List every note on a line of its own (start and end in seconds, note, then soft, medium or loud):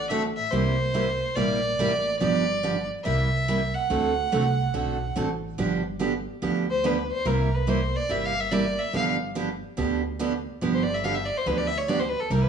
0.00 0.35 A1 medium
0.09 0.22 D3 medium
0.09 0.22 A3 medium
0.09 0.22 C4 medium
0.09 0.23 F#4 medium
0.09 0.23 A4 medium
0.09 0.22 E5 medium
0.37 0.52 E5 loud
0.51 1.20 C2 medium
0.51 0.75 C3 medium
0.51 0.75 G3 medium
0.51 0.75 A#3 medium
0.51 0.75 E4 medium
0.51 0.75 G4 medium
0.51 1.37 C5 loud
0.94 1.06 C3 medium
0.94 1.06 G3 medium
0.94 1.07 A#3 medium
0.94 1.07 E4 medium
0.94 1.07 G4 medium
1.35 1.73 A#1 medium
1.35 1.59 C3 medium
1.35 1.59 G3 medium
1.35 1.59 A#3 medium
1.35 1.59 E4 medium
1.35 1.60 G4 medium
1.35 2.19 D5 medium
1.79 2.15 A1 medium
1.79 1.91 C3 medium
1.79 1.91 G3 medium
1.79 1.91 A#3 medium
1.79 1.92 E4 medium
1.79 1.92 G4 medium
2.20 2.89 G1 medium
2.20 2.43 D3 medium
2.20 2.43 F3 medium
2.20 2.43 B3 medium
2.20 2.44 D4 medium
2.20 2.44 G4 medium
2.20 2.87 D5 loud
2.63 2.75 D3 medium
2.63 2.75 F3 medium
2.63 2.75 B3 medium
2.63 2.76 D4 medium
2.63 2.76 G4 medium
3.04 3.73 C2 medium
3.04 3.28 C3 medium
3.04 3.28 G3 medium
3.04 3.28 A#3 medium
3.04 3.28 E4 medium
3.04 3.28 G4 medium
3.04 3.76 E5 medium
3.48 3.60 C3 medium
3.48 3.60 G3 medium
3.48 3.60 A#3 medium
3.48 3.60 E4 medium
3.48 3.60 G4 medium
3.74 5.16 F#5 medium
3.90 4.24 D2 medium
3.90 4.12 D3 medium
3.90 4.12 A3 medium
3.90 4.12 C4 medium
3.90 4.13 F#4 medium
3.90 4.13 A4 medium
4.32 4.68 C2 medium
4.32 4.44 D3 medium
4.32 4.44 A3 medium
4.32 4.44 C4 medium
4.32 4.44 F#4 medium
4.32 4.44 A4 medium
4.74 5.10 B1 medium
4.74 4.96 D3 medium
4.74 4.96 A3 medium
4.74 4.97 C4 medium
4.74 4.97 F#4 medium
4.74 4.97 A4 medium
5.16 5.52 A1 medium
5.16 5.28 D3 medium
5.16 5.28 A3 medium
5.16 5.28 C4 medium
5.16 5.28 F#4 medium
5.16 5.28 A4 medium
5.58 6.26 G1 medium
5.58 5.80 D3 medium
5.58 5.81 F3 medium
5.58 5.81 B3 medium
5.58 5.81 D4 medium
5.58 5.81 G4 medium
5.99 6.12 D3 medium
5.99 6.12 F3 medium
5.99 6.12 B3 medium
5.99 6.12 D4 medium
5.99 6.12 G4 medium
6.42 7.09 D2 medium
6.42 6.64 D3 medium
6.42 6.65 F3 medium
6.42 6.65 B3 medium
6.42 6.65 D4 medium
6.42 6.65 G4 medium
6.71 6.87 C5 medium
6.84 6.96 D3 medium
6.84 6.96 F3 medium
6.84 6.96 B3 medium
6.84 6.96 D4 medium
6.84 6.97 G4 medium
6.84 7.12 B4 medium
7.12 7.28 C5 medium
7.25 7.93 C2 medium
7.25 7.48 C3 medium
7.25 7.48 G3 medium
7.25 7.48 A#3 medium
7.25 7.49 E4 medium
7.25 7.49 G4 medium
7.25 7.56 A#4 medium
7.54 7.71 B4 medium
7.67 7.80 C3 medium
7.67 7.80 G3 medium
7.67 7.80 A#3 medium
7.67 7.80 E4 medium
7.67 7.80 G4 medium
7.67 7.97 C5 medium
7.96 8.13 D5 medium
8.09 8.77 G1 medium
8.09 8.32 C3 medium
8.09 8.32 G3 medium
8.09 8.32 A#3 medium
8.09 8.33 E4 medium
8.09 8.33 G4 medium
8.09 8.27 E5 medium
8.25 8.42 F5 loud
8.40 8.54 E5 medium
8.51 8.64 C3 medium
8.51 8.64 G3 medium
8.51 8.64 A#3 medium
8.51 8.64 E4 medium
8.51 8.64 G4 medium
8.51 8.81 D5 medium
8.79 8.94 E5 medium
8.93 9.61 G1 medium
8.93 9.16 D3 medium
8.93 9.16 F3 medium
8.93 9.17 B3 medium
8.93 9.17 D4 medium
8.93 9.17 G4 medium
8.93 9.12 F5 medium
9.35 9.48 D3 medium
9.35 9.48 F3 medium
9.35 9.48 B3 medium
9.35 9.48 D4 medium
9.35 9.48 G4 medium
9.77 10.45 D2 medium
9.77 10.00 D3 medium
9.77 10.00 F3 medium
9.77 10.00 B3 medium
9.77 10.01 D4 medium
9.77 10.01 G4 medium
10.19 10.32 D3 medium
10.19 10.32 F3 medium
10.19 10.32 B3 medium
10.19 10.32 D4 medium
10.19 10.32 G4 medium
10.61 11.29 G1 medium
10.61 10.84 D3 medium
10.61 10.85 F3 medium
10.61 10.85 B3 medium
10.61 10.85 D4 medium
10.61 10.85 G4 medium
10.74 10.85 C5 medium
10.83 10.96 D5 medium
10.94 11.06 E5 medium
11.04 11.16 D3 medium
11.04 11.16 F3 medium
11.04 11.16 B3 medium
11.04 11.17 D4 medium
11.04 11.17 G4 medium
11.04 11.16 F5 medium
11.15 11.27 E5 medium
11.26 11.39 D5 medium
11.38 11.48 C5 medium
11.46 12.13 D2 medium
11.46 11.69 D3 medium
11.46 11.69 F3 medium
11.46 11.69 B3 medium
11.46 11.69 D4 medium
11.46 11.69 G4 medium
11.46 11.59 B4 medium
11.57 11.69 D5 medium
11.67 11.79 E5 loud
11.78 11.90 C#5 medium
11.88 12.00 D3 medium
11.88 12.00 F3 medium
11.88 12.01 B3 medium
11.88 12.01 D4 medium
11.88 12.01 G4 medium
11.88 12.01 D5 medium
11.99 12.10 C5 medium
12.09 12.22 B4 medium
12.20 12.32 A4 medium
12.30 12.49 C2 medium
12.30 12.49 C3 medium
12.30 12.49 G3 medium
12.30 12.49 A#3 medium
12.30 12.49 E4 medium
12.30 12.49 G4 medium
12.30 12.43 A#4 medium
12.41 12.49 B4 medium